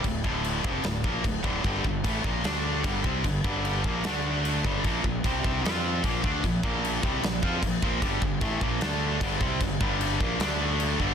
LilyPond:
<<
  \new Staff \with { instrumentName = "Distorted electric guitar" } { \clef bass \time 4/4 \key d \minor \tempo 4 = 151 <d, a,>8 <d, a, d>4 <f, c f>8 <d, a,>8 <bes, f bes>8 <d, a,>8 <d, a, d>8 | <g, d g>8 <g, d>8 <a, e a>8 <bes, f bes>8 <d a d'>4 <g, d g>8 <c g c'>8 | <g, d>8 <g, d g>4 <bes, f bes>8 <d a d'>4. <g, d g>8 | <bes, f bes>8 <bes, f>8 <c g c'>8 <c g c'>8 <f c' f'>4 <bes, f bes>8 <d a d'>8 |
<bes, f>8 <bes, f bes>4 <c g c'>8 <bes, f>8 <f c' f'>8 <bes, f>8 <bes, f bes>8 | <g, d g>8 <g, d>8 <a, e a>8 <bes, f bes>8 <d a d'>4 <g, d g>8 <c g c'>8 | <g, d>8 <g, d g>4 <bes, f bes>8 <d a d'>4. <g, d g>8 | }
  \new Staff \with { instrumentName = "Fingered electric bass" } { \clef bass \time 4/4 \key d \minor d,,8 d,,4 f,,8 d,,8 bes,,8 d,,8 d,,8 | g,,8 g,,8 a,,8 bes,,8 d,4 g,,8 c,8 | g,,8 g,,4 bes,,8 d,4. g,,8 | bes,,8 bes,,8 c,8 c,8 f,4 bes,,8 d,8 |
bes,,8 bes,,4 c,8 bes,,8 f,8 bes,,8 bes,,8 | g,,8 g,,8 a,,8 bes,,8 d,4 g,,8 c,8 | g,,8 g,,4 bes,,8 d,4. g,,8 | }
  \new DrumStaff \with { instrumentName = "Drums" } \drummode { \time 4/4 <cymc bd>8 bd8 cymc8 bd8 <cymc sn>8 bd8 <cymc bd>8 bd8 | <cymc bd>8 bd8 <cymc bd>8 bd8 <cymc sn>4 <cymc bd>8 bd8 | <cymc bd>8 bd8 cymc8 bd8 <cymc sn>4 cymc8 bd8 | <cymc bd>8 bd8 <cymc bd>8 bd8 <cymc sn>4 <cymc bd>8 bd8 |
<cymc bd>8 bd8 cymc8 bd8 <cymc sn>8 bd8 <cymc bd>8 bd8 | <cymc bd>8 bd8 <cymc bd>8 bd8 <cymc sn>4 <cymc bd>8 bd8 | <cymc bd>8 bd8 cymc8 bd8 <cymc sn>4 cymc8 bd8 | }
>>